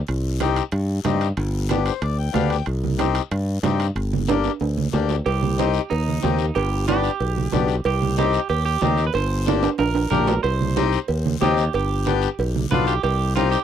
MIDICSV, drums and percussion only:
0, 0, Header, 1, 2, 480
1, 0, Start_track
1, 0, Key_signature, -3, "minor"
1, 0, Tempo, 323974
1, 116, Time_signature, 4, 2, 24, 8
1, 20206, End_track
2, 0, Start_track
2, 0, Title_t, "Drums"
2, 99, Note_on_c, 9, 74, 68
2, 124, Note_on_c, 9, 65, 64
2, 126, Note_on_c, 9, 63, 30
2, 247, Note_off_c, 9, 74, 0
2, 272, Note_off_c, 9, 65, 0
2, 274, Note_off_c, 9, 63, 0
2, 596, Note_on_c, 9, 65, 68
2, 599, Note_on_c, 9, 73, 71
2, 604, Note_on_c, 9, 63, 85
2, 745, Note_off_c, 9, 65, 0
2, 747, Note_off_c, 9, 73, 0
2, 752, Note_off_c, 9, 63, 0
2, 835, Note_on_c, 9, 65, 62
2, 835, Note_on_c, 9, 73, 65
2, 984, Note_off_c, 9, 65, 0
2, 984, Note_off_c, 9, 73, 0
2, 1059, Note_on_c, 9, 74, 65
2, 1069, Note_on_c, 9, 65, 68
2, 1082, Note_on_c, 9, 63, 35
2, 1207, Note_off_c, 9, 74, 0
2, 1217, Note_off_c, 9, 65, 0
2, 1230, Note_off_c, 9, 63, 0
2, 1552, Note_on_c, 9, 65, 61
2, 1552, Note_on_c, 9, 66, 73
2, 1553, Note_on_c, 9, 73, 64
2, 1561, Note_on_c, 9, 63, 69
2, 1700, Note_off_c, 9, 65, 0
2, 1700, Note_off_c, 9, 66, 0
2, 1701, Note_off_c, 9, 73, 0
2, 1709, Note_off_c, 9, 63, 0
2, 1793, Note_on_c, 9, 65, 58
2, 1797, Note_on_c, 9, 73, 60
2, 1941, Note_off_c, 9, 65, 0
2, 1945, Note_off_c, 9, 73, 0
2, 2030, Note_on_c, 9, 65, 59
2, 2033, Note_on_c, 9, 74, 74
2, 2049, Note_on_c, 9, 63, 36
2, 2179, Note_off_c, 9, 65, 0
2, 2181, Note_off_c, 9, 74, 0
2, 2198, Note_off_c, 9, 63, 0
2, 2506, Note_on_c, 9, 65, 63
2, 2507, Note_on_c, 9, 73, 69
2, 2531, Note_on_c, 9, 63, 85
2, 2654, Note_off_c, 9, 65, 0
2, 2656, Note_off_c, 9, 73, 0
2, 2679, Note_off_c, 9, 63, 0
2, 2751, Note_on_c, 9, 65, 64
2, 2762, Note_on_c, 9, 73, 71
2, 2899, Note_off_c, 9, 65, 0
2, 2911, Note_off_c, 9, 73, 0
2, 2991, Note_on_c, 9, 65, 72
2, 3013, Note_on_c, 9, 63, 34
2, 3014, Note_on_c, 9, 74, 66
2, 3139, Note_off_c, 9, 65, 0
2, 3161, Note_off_c, 9, 63, 0
2, 3162, Note_off_c, 9, 74, 0
2, 3467, Note_on_c, 9, 65, 68
2, 3467, Note_on_c, 9, 66, 71
2, 3491, Note_on_c, 9, 73, 60
2, 3494, Note_on_c, 9, 63, 79
2, 3615, Note_off_c, 9, 65, 0
2, 3615, Note_off_c, 9, 66, 0
2, 3639, Note_off_c, 9, 73, 0
2, 3642, Note_off_c, 9, 63, 0
2, 3707, Note_on_c, 9, 65, 63
2, 3740, Note_on_c, 9, 73, 59
2, 3855, Note_off_c, 9, 65, 0
2, 3888, Note_off_c, 9, 73, 0
2, 3942, Note_on_c, 9, 65, 62
2, 3961, Note_on_c, 9, 74, 62
2, 3969, Note_on_c, 9, 63, 36
2, 4090, Note_off_c, 9, 65, 0
2, 4109, Note_off_c, 9, 74, 0
2, 4117, Note_off_c, 9, 63, 0
2, 4206, Note_on_c, 9, 63, 70
2, 4354, Note_off_c, 9, 63, 0
2, 4430, Note_on_c, 9, 65, 73
2, 4434, Note_on_c, 9, 63, 85
2, 4442, Note_on_c, 9, 73, 65
2, 4578, Note_off_c, 9, 65, 0
2, 4582, Note_off_c, 9, 63, 0
2, 4590, Note_off_c, 9, 73, 0
2, 4666, Note_on_c, 9, 65, 72
2, 4667, Note_on_c, 9, 73, 71
2, 4814, Note_off_c, 9, 65, 0
2, 4815, Note_off_c, 9, 73, 0
2, 4908, Note_on_c, 9, 74, 68
2, 4912, Note_on_c, 9, 65, 74
2, 4921, Note_on_c, 9, 63, 33
2, 5056, Note_off_c, 9, 74, 0
2, 5061, Note_off_c, 9, 65, 0
2, 5069, Note_off_c, 9, 63, 0
2, 5385, Note_on_c, 9, 65, 63
2, 5385, Note_on_c, 9, 66, 71
2, 5393, Note_on_c, 9, 73, 62
2, 5403, Note_on_c, 9, 63, 69
2, 5533, Note_off_c, 9, 65, 0
2, 5533, Note_off_c, 9, 66, 0
2, 5541, Note_off_c, 9, 73, 0
2, 5551, Note_off_c, 9, 63, 0
2, 5627, Note_on_c, 9, 65, 64
2, 5637, Note_on_c, 9, 73, 66
2, 5775, Note_off_c, 9, 65, 0
2, 5785, Note_off_c, 9, 73, 0
2, 5864, Note_on_c, 9, 74, 67
2, 5868, Note_on_c, 9, 65, 57
2, 5883, Note_on_c, 9, 63, 35
2, 6012, Note_off_c, 9, 74, 0
2, 6017, Note_off_c, 9, 65, 0
2, 6032, Note_off_c, 9, 63, 0
2, 6123, Note_on_c, 9, 63, 73
2, 6271, Note_off_c, 9, 63, 0
2, 6332, Note_on_c, 9, 73, 68
2, 6349, Note_on_c, 9, 65, 94
2, 6361, Note_on_c, 9, 63, 90
2, 6480, Note_off_c, 9, 73, 0
2, 6497, Note_off_c, 9, 65, 0
2, 6509, Note_off_c, 9, 63, 0
2, 6576, Note_on_c, 9, 73, 59
2, 6594, Note_on_c, 9, 65, 67
2, 6724, Note_off_c, 9, 73, 0
2, 6742, Note_off_c, 9, 65, 0
2, 6812, Note_on_c, 9, 74, 64
2, 6829, Note_on_c, 9, 65, 66
2, 6841, Note_on_c, 9, 63, 35
2, 6960, Note_off_c, 9, 74, 0
2, 6977, Note_off_c, 9, 65, 0
2, 6989, Note_off_c, 9, 63, 0
2, 7079, Note_on_c, 9, 63, 66
2, 7227, Note_off_c, 9, 63, 0
2, 7303, Note_on_c, 9, 73, 55
2, 7308, Note_on_c, 9, 66, 66
2, 7316, Note_on_c, 9, 63, 64
2, 7452, Note_off_c, 9, 73, 0
2, 7456, Note_off_c, 9, 66, 0
2, 7464, Note_off_c, 9, 63, 0
2, 7540, Note_on_c, 9, 73, 63
2, 7560, Note_on_c, 9, 66, 65
2, 7688, Note_off_c, 9, 73, 0
2, 7708, Note_off_c, 9, 66, 0
2, 7793, Note_on_c, 9, 74, 67
2, 7794, Note_on_c, 9, 56, 93
2, 7801, Note_on_c, 9, 63, 33
2, 7942, Note_off_c, 9, 56, 0
2, 7942, Note_off_c, 9, 74, 0
2, 7949, Note_off_c, 9, 63, 0
2, 8041, Note_on_c, 9, 63, 71
2, 8189, Note_off_c, 9, 63, 0
2, 8271, Note_on_c, 9, 73, 72
2, 8288, Note_on_c, 9, 63, 90
2, 8419, Note_off_c, 9, 73, 0
2, 8436, Note_off_c, 9, 63, 0
2, 8500, Note_on_c, 9, 73, 71
2, 8649, Note_off_c, 9, 73, 0
2, 8750, Note_on_c, 9, 74, 72
2, 8755, Note_on_c, 9, 56, 89
2, 8766, Note_on_c, 9, 63, 37
2, 8898, Note_off_c, 9, 74, 0
2, 8903, Note_off_c, 9, 56, 0
2, 8914, Note_off_c, 9, 63, 0
2, 9016, Note_on_c, 9, 63, 61
2, 9164, Note_off_c, 9, 63, 0
2, 9223, Note_on_c, 9, 73, 62
2, 9234, Note_on_c, 9, 66, 73
2, 9256, Note_on_c, 9, 63, 80
2, 9371, Note_off_c, 9, 73, 0
2, 9382, Note_off_c, 9, 66, 0
2, 9405, Note_off_c, 9, 63, 0
2, 9459, Note_on_c, 9, 73, 61
2, 9607, Note_off_c, 9, 73, 0
2, 9708, Note_on_c, 9, 74, 64
2, 9718, Note_on_c, 9, 56, 90
2, 9736, Note_on_c, 9, 63, 30
2, 9856, Note_off_c, 9, 74, 0
2, 9866, Note_off_c, 9, 56, 0
2, 9884, Note_off_c, 9, 63, 0
2, 10193, Note_on_c, 9, 73, 67
2, 10200, Note_on_c, 9, 63, 90
2, 10341, Note_off_c, 9, 73, 0
2, 10348, Note_off_c, 9, 63, 0
2, 10426, Note_on_c, 9, 73, 66
2, 10574, Note_off_c, 9, 73, 0
2, 10673, Note_on_c, 9, 74, 75
2, 10674, Note_on_c, 9, 56, 85
2, 10682, Note_on_c, 9, 63, 36
2, 10821, Note_off_c, 9, 74, 0
2, 10822, Note_off_c, 9, 56, 0
2, 10830, Note_off_c, 9, 63, 0
2, 10925, Note_on_c, 9, 63, 62
2, 11073, Note_off_c, 9, 63, 0
2, 11148, Note_on_c, 9, 66, 75
2, 11157, Note_on_c, 9, 73, 64
2, 11159, Note_on_c, 9, 63, 83
2, 11159, Note_on_c, 9, 64, 72
2, 11297, Note_off_c, 9, 66, 0
2, 11305, Note_off_c, 9, 73, 0
2, 11307, Note_off_c, 9, 63, 0
2, 11307, Note_off_c, 9, 64, 0
2, 11380, Note_on_c, 9, 73, 64
2, 11528, Note_off_c, 9, 73, 0
2, 11616, Note_on_c, 9, 74, 75
2, 11632, Note_on_c, 9, 56, 103
2, 11649, Note_on_c, 9, 63, 37
2, 11765, Note_off_c, 9, 74, 0
2, 11781, Note_off_c, 9, 56, 0
2, 11797, Note_off_c, 9, 63, 0
2, 11887, Note_on_c, 9, 63, 72
2, 12035, Note_off_c, 9, 63, 0
2, 12108, Note_on_c, 9, 73, 70
2, 12128, Note_on_c, 9, 63, 95
2, 12256, Note_off_c, 9, 73, 0
2, 12276, Note_off_c, 9, 63, 0
2, 12344, Note_on_c, 9, 73, 68
2, 12492, Note_off_c, 9, 73, 0
2, 12578, Note_on_c, 9, 74, 66
2, 12588, Note_on_c, 9, 56, 95
2, 12609, Note_on_c, 9, 63, 32
2, 12726, Note_off_c, 9, 74, 0
2, 12736, Note_off_c, 9, 56, 0
2, 12757, Note_off_c, 9, 63, 0
2, 13060, Note_on_c, 9, 73, 64
2, 13064, Note_on_c, 9, 66, 76
2, 13085, Note_on_c, 9, 63, 74
2, 13208, Note_off_c, 9, 73, 0
2, 13212, Note_off_c, 9, 66, 0
2, 13234, Note_off_c, 9, 63, 0
2, 13299, Note_on_c, 9, 73, 58
2, 13447, Note_off_c, 9, 73, 0
2, 13522, Note_on_c, 9, 74, 72
2, 13538, Note_on_c, 9, 56, 97
2, 13561, Note_on_c, 9, 63, 35
2, 13670, Note_off_c, 9, 74, 0
2, 13686, Note_off_c, 9, 56, 0
2, 13710, Note_off_c, 9, 63, 0
2, 14014, Note_on_c, 9, 73, 70
2, 14046, Note_on_c, 9, 63, 100
2, 14162, Note_off_c, 9, 73, 0
2, 14194, Note_off_c, 9, 63, 0
2, 14264, Note_on_c, 9, 73, 66
2, 14265, Note_on_c, 9, 65, 97
2, 14412, Note_off_c, 9, 73, 0
2, 14413, Note_off_c, 9, 65, 0
2, 14492, Note_on_c, 9, 74, 68
2, 14500, Note_on_c, 9, 56, 77
2, 14500, Note_on_c, 9, 65, 93
2, 14521, Note_on_c, 9, 63, 37
2, 14640, Note_off_c, 9, 74, 0
2, 14648, Note_off_c, 9, 56, 0
2, 14648, Note_off_c, 9, 65, 0
2, 14669, Note_off_c, 9, 63, 0
2, 14739, Note_on_c, 9, 65, 80
2, 14887, Note_off_c, 9, 65, 0
2, 14978, Note_on_c, 9, 73, 61
2, 14991, Note_on_c, 9, 63, 69
2, 14991, Note_on_c, 9, 64, 73
2, 15126, Note_off_c, 9, 73, 0
2, 15139, Note_off_c, 9, 63, 0
2, 15139, Note_off_c, 9, 64, 0
2, 15220, Note_on_c, 9, 73, 65
2, 15225, Note_on_c, 9, 66, 98
2, 15368, Note_off_c, 9, 73, 0
2, 15373, Note_off_c, 9, 66, 0
2, 15465, Note_on_c, 9, 56, 94
2, 15469, Note_on_c, 9, 74, 68
2, 15483, Note_on_c, 9, 63, 35
2, 15613, Note_off_c, 9, 56, 0
2, 15617, Note_off_c, 9, 74, 0
2, 15631, Note_off_c, 9, 63, 0
2, 15722, Note_on_c, 9, 63, 69
2, 15870, Note_off_c, 9, 63, 0
2, 15945, Note_on_c, 9, 73, 64
2, 15957, Note_on_c, 9, 63, 97
2, 16093, Note_off_c, 9, 73, 0
2, 16105, Note_off_c, 9, 63, 0
2, 16187, Note_on_c, 9, 73, 65
2, 16335, Note_off_c, 9, 73, 0
2, 16417, Note_on_c, 9, 74, 71
2, 16421, Note_on_c, 9, 56, 93
2, 16442, Note_on_c, 9, 63, 39
2, 16565, Note_off_c, 9, 74, 0
2, 16569, Note_off_c, 9, 56, 0
2, 16590, Note_off_c, 9, 63, 0
2, 16680, Note_on_c, 9, 63, 71
2, 16828, Note_off_c, 9, 63, 0
2, 16911, Note_on_c, 9, 66, 73
2, 16916, Note_on_c, 9, 63, 80
2, 16916, Note_on_c, 9, 73, 66
2, 17059, Note_off_c, 9, 66, 0
2, 17064, Note_off_c, 9, 63, 0
2, 17065, Note_off_c, 9, 73, 0
2, 17149, Note_on_c, 9, 73, 71
2, 17297, Note_off_c, 9, 73, 0
2, 17383, Note_on_c, 9, 74, 71
2, 17395, Note_on_c, 9, 56, 94
2, 17407, Note_on_c, 9, 63, 33
2, 17531, Note_off_c, 9, 74, 0
2, 17544, Note_off_c, 9, 56, 0
2, 17555, Note_off_c, 9, 63, 0
2, 17856, Note_on_c, 9, 73, 69
2, 17882, Note_on_c, 9, 63, 85
2, 18005, Note_off_c, 9, 73, 0
2, 18030, Note_off_c, 9, 63, 0
2, 18101, Note_on_c, 9, 73, 72
2, 18249, Note_off_c, 9, 73, 0
2, 18353, Note_on_c, 9, 74, 71
2, 18366, Note_on_c, 9, 56, 86
2, 18376, Note_on_c, 9, 63, 36
2, 18501, Note_off_c, 9, 74, 0
2, 18514, Note_off_c, 9, 56, 0
2, 18524, Note_off_c, 9, 63, 0
2, 18605, Note_on_c, 9, 63, 65
2, 18753, Note_off_c, 9, 63, 0
2, 18829, Note_on_c, 9, 73, 58
2, 18847, Note_on_c, 9, 63, 75
2, 18847, Note_on_c, 9, 64, 80
2, 18977, Note_off_c, 9, 73, 0
2, 18995, Note_off_c, 9, 63, 0
2, 18995, Note_off_c, 9, 64, 0
2, 19066, Note_on_c, 9, 73, 72
2, 19214, Note_off_c, 9, 73, 0
2, 19311, Note_on_c, 9, 56, 96
2, 19323, Note_on_c, 9, 74, 73
2, 19326, Note_on_c, 9, 63, 33
2, 19459, Note_off_c, 9, 56, 0
2, 19471, Note_off_c, 9, 74, 0
2, 19474, Note_off_c, 9, 63, 0
2, 19787, Note_on_c, 9, 73, 75
2, 19806, Note_on_c, 9, 63, 89
2, 19935, Note_off_c, 9, 73, 0
2, 19954, Note_off_c, 9, 63, 0
2, 20030, Note_on_c, 9, 73, 77
2, 20179, Note_off_c, 9, 73, 0
2, 20206, End_track
0, 0, End_of_file